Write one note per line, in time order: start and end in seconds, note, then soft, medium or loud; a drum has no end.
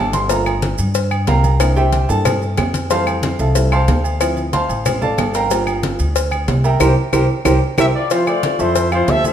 0.00 0.73 G1 medium
0.00 0.13 A5 loud
0.13 0.29 C6 loud
0.13 cowbell medium
0.13 high conga medium
0.13 maracas medium
0.29 0.51 A3 medium
0.29 0.51 A#3 medium
0.29 0.52 F4 medium
0.29 0.75 A#5 loud
0.29 cowbell loud
0.29 high conga soft
0.29 low agogo medium
0.29 maracas medium
0.46 high conga soft
0.46 low agogo loud
0.46 claves medium
0.46 maracas soft
0.62 cowbell medium
0.62 high conga medium
0.62 low timbale medium
0.62 maracas soft
0.78 1.24 G2 loud
0.78 high conga soft
0.78 low agogo medium
0.78 maracas medium
0.95 cowbell loud
0.95 high conga soft
0.95 maracas medium
1.11 high conga soft
1.11 low agogo loud
1.11 claves medium
1.11 maracas soft
1.27 2.03 C2 loud
1.27 1.73 A#4 medium
1.27 1.58 F5 medium
1.27 1.73 G5 medium
1.27 1.73 A#5 loud
1.27 cowbell medium
1.27 high conga medium
1.27 low timbale medium
1.27 low agogo medium
1.27 maracas soft
1.44 high conga medium
1.44 low agogo medium
1.44 maracas medium
1.59 1.81 A#3 medium
1.59 1.82 D4 medium
1.59 1.82 E4 medium
1.59 cowbell loud
1.59 high conga soft
1.59 low agogo loud
1.59 claves medium
1.59 maracas medium
1.76 2.07 G4 medium
1.76 2.07 C5 medium
1.76 2.07 E5 medium
1.76 2.07 G5 loud
1.76 high conga soft
1.76 low agogo medium
1.76 maracas soft
1.92 cowbell medium
1.92 high conga medium
1.92 low timbale medium
1.92 maracas soft
2.09 2.55 G2 loud
2.09 2.23 A#3 medium
2.09 2.24 D4 soft
2.09 2.24 E4 medium
2.09 2.55 A4 medium
2.09 2.54 A5 loud
2.09 high conga soft
2.09 low agogo medium
2.09 maracas medium
2.25 cowbell loud
2.25 high conga soft
2.25 low conga medium
2.25 low agogo loud
2.25 claves medium
2.25 maracas medium
2.42 high conga soft
2.42 maracas soft
2.57 3.34 F2 medium
2.57 cowbell medium
2.57 high conga medium
2.57 low timbale medium
2.57 low agogo loud
2.57 claves medium
2.57 maracas soft
2.74 cowbell medium
2.74 high conga medium
2.74 maracas medium
2.90 4.17 E3 medium
2.90 3.54 G3 medium
2.90 3.54 A3 medium
2.90 3.36 C5 medium
2.90 3.36 F5 medium
2.90 3.36 A5 medium
2.90 3.36 C6 loud
2.90 cowbell loud
2.90 high conga soft
2.90 low agogo medium
2.90 maracas medium
3.07 high conga soft
3.07 low agogo loud
3.07 claves medium
3.07 maracas soft
3.23 cowbell medium
3.23 high conga loud
3.23 low timbale medium
3.23 maracas soft
3.39 3.85 C2 loud
3.39 3.70 A4 medium
3.39 3.70 E5 medium
3.39 3.70 F5 medium
3.39 3.70 A5 medium
3.39 high conga soft
3.39 low agogo medium
3.39 maracas medium
3.55 3.70 G3 medium
3.55 3.70 A3 medium
3.55 3.71 E4 medium
3.55 cowbell loud
3.55 high conga soft
3.55 maracas medium
3.72 4.18 C5 medium
3.72 4.18 F5 medium
3.72 4.18 A5 medium
3.72 4.17 C6 loud
3.72 high conga soft
3.72 low agogo loud
3.72 claves medium
3.72 maracas soft
3.88 4.64 D2 medium
3.88 cowbell medium
3.88 high conga medium
3.88 low timbale medium
3.88 low agogo medium
3.88 maracas soft
4.04 low agogo medium
4.04 maracas medium
4.20 4.42 F3 medium
4.20 4.42 C4 medium
4.20 4.43 E4 medium
4.20 cowbell loud
4.20 high conga soft
4.20 low agogo loud
4.20 claves medium
4.20 maracas loud
4.37 high conga soft
4.37 low agogo medium
4.37 maracas soft
4.53 4.99 C5 medium
4.53 4.99 F5 medium
4.53 4.99 A5 medium
4.53 4.99 C6 loud
4.53 cowbell medium
4.53 high conga medium
4.53 low timbale medium
4.53 maracas soft
4.69 5.15 A1 medium
4.69 high conga soft
4.69 low agogo medium
4.69 maracas medium
4.86 cowbell loud
4.86 high conga soft
4.86 low conga medium
4.86 low agogo loud
4.86 claves medium
4.86 maracas loud
5.01 5.32 A4 medium
5.01 5.32 D5 medium
5.01 5.32 F5 medium
5.01 5.32 A5 loud
5.01 high conga soft
5.01 low conga medium
5.01 maracas soft
5.18 5.94 G1 medium
5.18 cowbell medium
5.18 high conga medium
5.18 low timbale medium
5.18 low agogo loud
5.18 claves medium
5.18 maracas soft
5.34 5.80 A#4 medium
5.34 5.80 F5 medium
5.34 5.80 G5 medium
5.34 5.80 A#5 loud
5.34 cowbell medium
5.34 maracas medium
5.50 5.97 G3 medium
5.50 5.97 A#3 medium
5.50 5.97 F4 medium
5.50 cowbell loud
5.50 high conga soft
5.50 low agogo medium
5.50 maracas medium
5.67 high conga soft
5.67 low agogo loud
5.67 claves medium
5.67 maracas soft
5.83 cowbell medium
5.83 high conga loud
5.83 low timbale medium
5.83 maracas soft
5.99 6.45 D2 loud
5.99 high conga soft
5.99 low agogo medium
5.99 maracas medium
6.16 cowbell loud
6.16 high conga soft
6.16 maracas loud
6.31 high conga soft
6.31 low agogo loud
6.31 claves medium
6.31 maracas soft
6.48 6.78 C2 loud
6.48 cowbell medium
6.48 high conga medium
6.48 low timbale medium
6.48 low agogo medium
6.48 maracas soft
6.64 6.79 A#4 medium
6.64 6.80 E5 medium
6.64 6.80 G5 medium
6.64 6.79 A#5 medium
6.64 low agogo medium
6.64 maracas medium
6.80 6.93 C2 loud
6.80 6.91 G4 loud
6.80 6.91 A#4 loud
6.80 6.91 C5 loud
6.80 cowbell loud
6.80 high conga loud
6.80 high timbale loud
6.80 claves loud
6.80 maracas loud
7.13 7.25 C2 loud
7.13 7.23 G4 loud
7.13 7.23 A#4 loud
7.13 7.23 C5 loud
7.13 cowbell loud
7.13 high conga loud
7.13 high timbale loud
7.13 claves loud
7.13 maracas medium
7.45 7.58 C2 loud
7.45 7.56 G4 loud
7.45 7.56 A#4 loud
7.45 7.56 C5 loud
7.45 cowbell loud
7.45 high conga loud
7.45 high timbale loud
7.45 claves loud
7.45 maracas loud
7.78 7.90 C2 loud
7.78 7.89 G4 loud
7.78 7.87 G4 medium
7.78 7.88 A#4 loud
7.78 7.88 C5 loud
7.78 7.86 E5 loud
7.78 cowbell loud
7.78 high conga loud
7.78 high timbale loud
7.78 claves loud
7.78 maracas medium
7.96 8.10 F4 medium
7.96 8.10 D5 medium
8.10 8.24 F3 medium
8.10 8.28 E4 medium
8.10 8.24 F4 medium
8.10 8.27 C5 medium
8.10 8.24 F5 medium
8.10 cowbell loud
8.10 high conga soft
8.10 low agogo medium
8.10 maracas loud
8.27 8.54 A3 medium
8.27 8.58 F4 medium
8.27 8.54 A4 medium
8.27 8.54 C5 medium
8.27 8.58 D5 medium
8.27 high conga soft
8.27 low agogo loud
8.27 claves medium
8.27 maracas soft
8.43 cowbell medium
8.43 high conga loud
8.43 low timbale medium
8.43 maracas soft
8.59 9.04 F2 medium
8.59 8.86 F3 medium
8.59 8.93 E4 medium
8.59 8.86 A4 medium
8.59 8.92 C5 loud
8.59 8.86 E5 medium
8.59 high conga soft
8.59 low agogo medium
8.59 maracas medium
8.75 cowbell loud
8.75 high conga soft
8.75 maracas loud
8.92 9.05 F3 medium
8.92 9.08 E4 medium
8.92 9.05 F4 medium
8.92 9.08 C5 medium
8.92 9.05 F5 medium
8.92 high conga soft
8.92 low agogo loud
8.92 claves medium
8.92 maracas soft
9.08 9.33 D2 loud
9.08 9.21 A3 medium
9.08 9.22 A4 medium
9.08 9.25 A4 medium
9.08 9.22 C5 medium
9.08 9.25 E5 loud
9.08 cowbell medium
9.08 high conga medium
9.08 low timbale medium
9.08 low agogo medium
9.08 maracas soft
9.24 9.33 A3 medium
9.24 9.33 A4 medium
9.24 9.33 C5 medium
9.24 9.33 F5 loud
9.24 high conga medium
9.24 low agogo medium
9.24 maracas medium